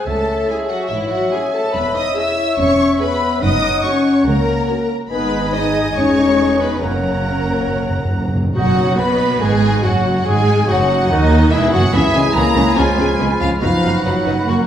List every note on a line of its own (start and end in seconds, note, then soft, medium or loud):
0.06 0.41 C#2 medium
0.06 0.49 A3 medium
0.06 0.49 A4 medium
0.06 3.42 C#5 soft
0.06 3.44 E5 medium
0.06 0.49 A5 medium
0.49 0.71 G#3 medium
0.49 0.81 C#4 medium
0.49 0.81 E4 medium
0.49 0.70 G#4 medium
0.49 0.71 G#4 medium
0.49 0.57 G#5 medium
0.69 0.80 F#3 medium
0.69 0.91 F#4 medium
0.69 0.77 F#5 medium
0.88 1.24 G#1 medium
0.88 1.24 G#2 medium
0.88 1.11 E3 medium
0.88 1.12 E4 medium
0.88 0.96 E5 medium
1.10 1.32 F#3 medium
1.10 1.32 F#4 medium
1.10 1.33 F#4 medium
1.10 1.32 F#5 medium
1.30 1.40 G#3 medium
1.30 1.64 C#4 medium
1.30 1.64 E4 medium
1.30 1.40 G#4 medium
1.30 1.54 G#4 medium
1.30 1.53 G#5 medium
1.52 1.62 A3 medium
1.52 1.74 A4 medium
1.52 1.75 A5 medium
1.72 2.08 E1 medium
1.72 2.08 E2 medium
1.72 1.84 B3 medium
1.72 1.95 B4 medium
1.72 1.96 B4 medium
1.72 1.96 B5 medium
1.94 2.04 D#4 medium
1.94 2.16 D#5 medium
1.94 2.17 D#5 medium
1.94 2.17 D#6 medium
2.15 2.48 C#4 medium
2.15 2.57 E4 medium
2.15 2.48 G#4 medium
2.15 2.59 E5 medium
2.15 2.58 E5 medium
2.15 2.59 E6 medium
2.57 2.92 E1 medium
2.57 2.92 E2 medium
2.57 2.99 C#4 medium
2.57 3.00 C#5 medium
2.57 3.00 C#6 medium
3.00 3.42 B3 medium
3.00 3.32 C#4 medium
3.00 3.32 G#4 medium
3.00 3.41 B4 medium
3.00 3.42 B4 medium
3.00 3.41 B5 medium
3.42 3.76 F#1 medium
3.42 3.76 F#2 medium
3.42 3.84 D#4 medium
3.42 4.81 C#5 medium
3.42 3.83 D#5 medium
3.42 3.84 D#5 loud
3.42 4.84 F#5 medium
3.42 3.84 D#6 loud
3.84 4.27 C#4 medium
3.84 4.17 C#4 medium
3.84 4.17 F#4 medium
3.84 4.26 C#5 medium
3.84 4.27 C#6 medium
4.26 4.60 C#2 medium
4.26 4.61 C#2 medium
4.26 4.90 A#3 medium
4.26 4.89 A#4 medium
4.26 4.89 A#5 medium
4.69 5.01 C#4 medium
4.69 5.01 F#4 medium
5.10 5.92 G#1 medium
5.10 5.92 G#2 medium
5.10 5.51 G#3 medium
5.10 5.51 B3 medium
5.10 5.51 D#4 medium
5.10 5.50 B4 medium
5.10 5.51 B4 medium
5.10 6.83 D#5 medium
5.10 6.78 G#5 medium
5.10 5.51 B5 medium
5.52 5.95 G#3 medium
5.52 5.95 D#4 medium
5.52 5.95 D#5 medium
5.52 5.96 D#5 medium
5.52 5.96 D#6 medium
5.95 6.82 E1 medium
5.95 6.83 E2 medium
5.95 6.81 G#3 medium
5.95 6.60 C#4 medium
5.95 6.81 D#4 medium
5.95 6.59 C#5 medium
5.95 6.60 C#5 medium
5.95 6.62 C#6 medium
6.59 6.82 B3 medium
6.59 6.82 B4 medium
6.59 6.83 B5 medium
6.80 8.37 F#1 medium
6.80 8.36 F#2 medium
6.80 6.89 F#2 soft
6.80 8.35 A#3 medium
6.80 8.36 C#4 medium
6.80 8.34 A#4 medium
6.80 8.35 A#4 medium
6.80 8.34 C#5 medium
6.80 8.32 F#5 medium
6.80 8.32 A#5 medium
6.90 6.97 F#2 soft
7.05 7.13 F#2 soft
7.14 7.20 F#2 soft
7.21 7.28 F#2 soft
7.30 7.35 F#2 soft
7.36 7.42 F#2 soft
7.43 7.50 F#2 soft
7.51 7.58 F#2 soft
7.59 7.65 F#2 soft
7.66 7.72 F#2 soft
7.73 7.81 F#2 medium
7.82 7.89 F#2 medium
7.90 7.96 F#2 medium
7.98 8.04 F#2 medium
8.05 8.11 F#2 medium
8.13 8.18 F#2 medium
8.20 8.27 F#2 medium
8.28 8.34 F#2 medium
8.35 8.42 F#2 medium
8.43 8.51 F#2 medium
8.55 8.96 F#1 medium
8.55 8.97 F#2 medium
8.55 9.17 B2 medium
8.55 8.95 F#3 medium
8.55 8.96 F#3 medium
8.55 8.96 D#4 medium
8.55 8.96 F#4 medium
8.55 8.96 F#5 medium
8.55 8.97 F#5 medium
8.98 9.41 B1 medium
8.98 9.41 B2 medium
8.98 9.41 B3 medium
8.98 9.42 B3 medium
8.98 10.24 F#4 medium
8.98 9.41 B4 medium
8.98 9.43 B4 medium
8.98 9.41 B5 medium
9.41 9.84 G#1 medium
9.41 9.84 G#2 medium
9.41 9.84 G#3 medium
9.41 9.85 G#3 medium
9.41 9.84 G#4 medium
9.41 9.85 G#4 medium
9.41 9.85 G#5 medium
9.41 9.84 G#5 medium
9.83 10.26 F#1 medium
9.83 10.27 F#2 medium
9.83 10.26 F#3 medium
9.83 10.24 F#4 medium
9.83 10.27 F#4 medium
9.83 10.27 F#5 medium
9.83 10.26 F#5 medium
10.24 10.68 G#1 medium
10.24 10.68 G#2 medium
10.24 10.69 G#3 loud
10.24 10.68 G#3 medium
10.24 10.66 G#4 medium
10.24 10.71 G#4 medium
10.24 10.68 G#4 medium
10.24 10.68 G#5 medium
10.24 10.69 G#5 loud
10.67 11.10 F#1 medium
10.67 11.10 F#2 medium
10.67 11.11 F#3 medium
10.67 11.10 F#3 medium
10.67 11.11 D#4 medium
10.67 11.09 F#4 medium
10.67 11.11 F#5 medium
10.67 11.10 F#5 medium
11.10 11.51 D#2 medium
11.10 11.52 D#2 medium
11.10 11.52 D#3 medium
11.10 11.54 D#3 medium
11.10 11.51 D#4 medium
11.10 11.52 D#4 medium
11.10 11.54 F#4 medium
11.10 11.52 D#5 loud
11.10 11.52 D#5 medium
11.51 11.73 E1 loud
11.51 11.73 E2 medium
11.51 11.73 E3 medium
11.51 11.74 E3 medium
11.51 11.73 E4 medium
11.51 11.74 E4 medium
11.51 11.94 G#4 medium
11.51 11.73 E5 medium
11.51 11.59 E5 medium
11.72 11.82 F#1 medium
11.72 11.82 F#2 loud
11.72 11.81 F#3 medium
11.72 11.83 F#3 medium
11.72 11.93 F#4 medium
11.72 11.82 F#4 medium
11.72 11.93 F#5 loud
11.72 11.79 F#5 medium
11.93 12.02 C#2 medium
11.93 12.02 C#3 medium
11.93 12.02 E3 medium
11.93 12.15 E3 loud
11.93 12.01 B3 medium
11.93 12.02 C#4 medium
11.93 12.78 E4 medium
11.93 12.02 G#4 medium
11.93 12.76 G#4 medium
11.93 12.14 E5 loud
11.93 12.74 B5 medium
12.14 12.23 C#2 medium
12.14 12.23 C#3 medium
12.14 12.23 E3 medium
12.14 12.36 G#3 loud
12.14 12.23 B3 medium
12.14 12.22 C#4 medium
12.14 12.22 G#4 medium
12.14 12.35 G#5 loud
12.34 12.44 C#2 medium
12.34 12.44 C#3 medium
12.34 12.42 E3 medium
12.34 12.77 A#3 loud
12.34 12.43 B3 medium
12.34 12.45 C#4 medium
12.34 12.44 G#4 medium
12.34 12.77 A#5 loud
12.55 12.64 C#2 medium
12.55 12.64 C#3 medium
12.55 12.63 E3 medium
12.55 12.63 B3 medium
12.55 12.64 C#4 medium
12.55 12.64 G#4 medium
12.76 12.85 C#2 medium
12.76 12.86 C#3 medium
12.76 12.84 F3 medium
12.76 13.40 G#3 medium
12.76 12.84 B3 medium
12.76 12.85 C#4 medium
12.76 13.61 F4 medium
12.76 12.86 G#4 medium
12.76 13.41 G#5 loud
12.76 13.61 B5 medium
12.97 13.06 C#2 medium
12.97 13.08 C#3 medium
12.97 13.05 F3 medium
12.97 13.05 B3 medium
12.97 13.07 C#4 medium
12.97 13.07 G#4 medium
13.18 13.27 C#2 medium
13.18 13.29 C#3 medium
13.18 13.26 F3 medium
13.18 13.27 B3 medium
13.18 13.28 C#4 medium
13.18 13.29 G#4 medium
13.39 13.49 C#2 medium
13.39 13.50 C#3 medium
13.39 13.47 F3 medium
13.39 13.50 F3 medium
13.39 13.47 B3 medium
13.39 13.48 C#4 medium
13.39 13.48 G#4 medium
13.39 13.49 F5 loud
13.61 13.70 F#1 medium
13.61 13.71 F#2 medium
13.61 14.04 F3 medium
13.61 13.69 F#3 medium
13.61 13.69 B3 medium
13.61 14.04 D#4 medium
13.61 13.70 D#4 medium
13.61 14.67 F#4 medium
13.61 13.70 B4 medium
13.61 14.04 F5 loud
13.61 14.04 B5 medium
13.81 13.92 F#1 medium
13.81 13.92 F#2 medium
13.81 13.90 F#3 medium
13.81 13.89 B3 medium
13.81 13.93 D#4 medium
13.81 13.92 B4 medium
14.04 14.13 F#1 medium
14.04 14.14 F#2 medium
14.04 14.44 F#3 medium
14.04 14.67 F#3 medium
14.04 14.12 D#4 medium
14.04 14.47 D#4 medium
14.04 14.13 B4 soft
14.04 14.67 F#5 medium
14.04 14.48 B5 medium
14.26 14.34 F#1 medium
14.26 14.35 F#2 medium
14.26 14.34 D#4 medium
14.26 14.34 B4 medium
14.46 14.56 F#1 medium
14.46 14.57 F#2 medium
14.46 14.67 A#3 medium
14.46 14.67 C#4 medium
14.46 14.56 F#4 medium
14.46 14.55 A#4 medium
14.46 14.67 A#5 medium